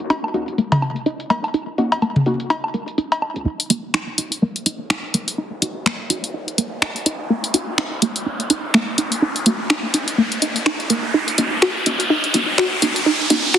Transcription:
0.00 D#1
0.10 D#4, closed hi-hat, cowbell
0.24 low woodblock
0.34 C#2 A#3 C#4 D#4 F#4, closed hi-hat
0.48 D#1, closed hi-hat
0.58 A#3, closed hi-hat
0.72 mid tom, cowbell
0.82 D#1 D#4, closed hi-hat, low woodblock
0.96 D#1, closed hi-hat
1.06 D#4, closed hi-hat
1.20 closed hi-hat
1.30 D#1 A#3, cowbell
1.44 closed hi-hat, low woodblock
1.54 D#4, closed hi-hat
1.78 A#3 C#4 D#4 F#4, closed hi-hat
1.92 D#1, closed hi-hat, cowbell
2.02 A#3, closed hi-hat, low woodblock
2.16 mid tom
2.26 C#2 A#3 C#4 D#4 F#4, closed hi-hat
2.40 D#1, closed hi-hat
2.50 D#4, closed hi-hat, cowbell
2.64 low woodblock
2.74 A#3, closed hi-hat
2.88 closed hi-hat
2.98 D#4, closed hi-hat
3.12 closed hi-hat, cowbell
3.22 D#4, low woodblock
3.36 C#2, closed hi-hat
3.46 D#4, riser
3.60 closed hi-hat
3.70 A#3 C#4 D#4 F#4, closed hi-hat
3.94 D#4, finger snap
4.18 A#3 C#4 D#4 F#4, closed hi-hat
4.32 closed hi-hat
4.42 A#3
4.56 closed hi-hat
4.66 D#4, closed hi-hat
4.90 D#4, finger snap
5.14 A#3, closed hi-hat
5.28 closed hi-hat
5.38 D#4
5.62 A#3 C#4 D#4 F#4, closed hi-hat
5.86 A#3, finger snap
6.10 A#3 C#4 D#4 F#4, closed hi-hat
6.24 closed hi-hat
6.34 D#4
6.48 closed hi-hat
6.58 A#3, closed hi-hat
6.82 D#4, finger snap
6.96 closed hi-hat
7.06 D#4, closed hi-hat
7.30 A#3
7.44 closed hi-hat
7.54 A#3 C#4 D#4 F#4, closed hi-hat
7.78 D#4, finger snap
8.02 A#3 C#4 D#4 F#4, closed hi-hat
8.16 closed hi-hat
8.26 D#4
8.40 closed hi-hat
8.50 D#4, closed hi-hat
8.74 A#3, finger snap
8.98 D#4, closed hi-hat
9.12 closed hi-hat
9.22 D#4
9.36 closed hi-hat
9.46 A#3 C#4 D#4 F#4, closed hi-hat
9.70 D#4, finger snap
9.94 D#4, closed hi-hat
10.08 closed hi-hat
10.18 A#3
10.32 closed hi-hat
10.42 D#4, closed hi-hat
10.56 closed hi-hat
10.66 D#4, finger snap
10.80 closed hi-hat
10.90 A#3, closed hi-hat
11.14 D#4
11.28 closed hi-hat
11.38 A#3 C#4 D#4 F#4, closed hi-hat
11.62 F#4, finger snap
11.86 A#3 C#4 D#4 F#4, closed hi-hat
12.00 closed hi-hat
12.10 D#4
12.24 closed hi-hat
12.34 A#3 C#4 D#4 F#4, closed hi-hat
12.58 F#4, finger snap
12.82 A#3 C#4 D#4 F#4, closed hi-hat
12.96 closed hi-hat
13.06 D#4
13.30 A#3 C#4 D#4 F#4, closed hi-hat
13.54 F#4, finger snap

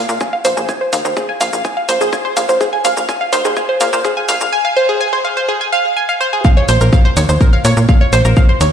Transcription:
0.09 A#2, shaker
0.21 G#5, kick, shaker
0.33 F5
0.45 A#1 C5, open hi-hat, shaker
0.57 A#1 G#4, shaker
0.69 G#5, kick, shaker
0.81 C5
0.93 D#2 F5, open hi-hat, shaker
1.05 D#2 C5, shaker
1.17 G#4, kick, shaker
1.29 G#5
1.41 A#1 F5, open hi-hat, shaker
1.53 A#1, shaker
1.65 G#5, kick, shaker
1.77 F5
1.89 A#1 C5, open hi-hat, shaker
2.01 A#1 G#4, shaker
2.13 G#5, kick, shaker
2.25 C5
2.37 A#1 F5, open hi-hat, shaker
2.49 A#1 C5, shaker
2.61 G#4, kick, shaker
2.73 G#5
2.85 A#1 F5, open hi-hat, shaker
2.97 A#1, shaker
3.09 G#5, kick, shaker
3.21 F5
3.33 D#2 C5, open hi-hat, shaker
3.45 D#2 G#4, shaker
3.57 G#5, kick, shaker
3.69 C5
3.81 A#2 F5, open hi-hat, shaker
3.93 A#2 C5, shaker
4.05 G#4, kick, shaker
4.17 G#5
4.29 A#1 F5, open hi-hat, shaker
4.41 A#1, shaker
4.53 G#5
4.65 F5
4.76 C5
4.89 G#4
5.01 G#5
5.13 C5
5.25 F5
5.37 C5
5.48 G#4
5.61 G#5
5.72 F5
5.97 G#5
6.09 F5
6.21 C5
6.33 G#4
6.45 F5, kick, shaker
6.57 C#5
6.69 A#1 C5, open hi-hat, shaker
6.81 A#1 A#4, shaker
6.93 F5, kick, shaker
7.05 C5
7.17 D#2 C#5, open hi-hat, shaker
7.29 D#2 C5, shaker
7.41 A#4, kick, shaker
7.53 F5
7.65 A#2 C#5, open hi-hat, shaker
7.77 A#2, shaker
7.89 F5, kick, shaker
8.01 C#5
8.13 A#1 C5, open hi-hat, shaker
8.25 A#1 A#4, shaker
8.37 F5, kick, shaker
8.49 C5
8.61 D#2 C#5, open hi-hat, shaker

